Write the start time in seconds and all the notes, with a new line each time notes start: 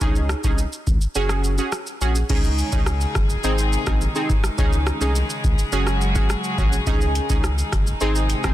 0.01 C#2 C#4 D#4 G#4, kick, shaker
0.16 shaker
0.29 cross-stick, shaker
0.44 C2 C#4 D#4 G#4, kick, shaker
0.58 shaker
0.73 shaker
0.87 C#2, kick, shaker
1.01 shaker
1.15 F#1 C#4 F#4 G#4, shaker
1.29 cross-stick, shaker
1.44 shaker
1.58 C#4 F#4 G#4, shaker
1.72 cross-stick, shaker
1.87 shaker
2.01 A#1 C#4 F#4 G#4, shaker
2.15 shaker
2.30 C#2 C#3 D#3 G#3 C#4 D#4 G#4, kick, crash, shaker
2.44 shaker
2.58 shaker
2.72 C#2 C#4 D#4 G#4, kick, shaker
2.86 cross-stick, shaker
3.01 shaker
3.15 F#1, kick, cross-stick, shaker
3.30 shaker
3.44 G#1 C3 G#3 C4 D#4 G#4, shaker
3.58 shaker
3.73 shaker
3.87 A#1 C4 D#4 G#4, kick, cross-stick, shaker
4.01 shaker
4.15 C4 D#4 G#4, shaker
4.29 G#1, kick, shaker
4.44 cross-stick, shaker
4.58 C#2 C#3 C#4 D#4 G#4, kick, shaker
4.73 shaker
4.87 cross-stick, shaker
5.01 C2 C#4 D#4 G#4, shaker
5.16 shaker
5.30 shaker
5.44 C#2, kick, shaker
5.59 shaker
5.72 F#1 F#3 C#4 F#4 G#4, shaker
5.87 cross-stick, shaker
6.01 shaker
6.15 C#4 F#4 G#4, kick, shaker
6.30 cross-stick, shaker
6.44 shaker
6.58 A#1 C#4 F#4 G#4, kick, shaker
6.73 shaker
6.87 C#2 D#3 C#4 D#4 G#4, kick, shaker
7.01 shaker
7.15 closed hi-hat, shaker
7.30 C#2 C#4 D#4 G#4, kick, shaker
7.44 cross-stick, shaker
7.58 shaker
7.72 F#1, kick, cross-stick, closed hi-hat, shaker
7.87 shaker
8.01 G#1 C3 D#3 G#3 C4 D#4 G#4, shaker
8.15 shaker
8.30 closed hi-hat, shaker
8.44 A#1 C4 D#4 G#4, kick, cross-stick, shaker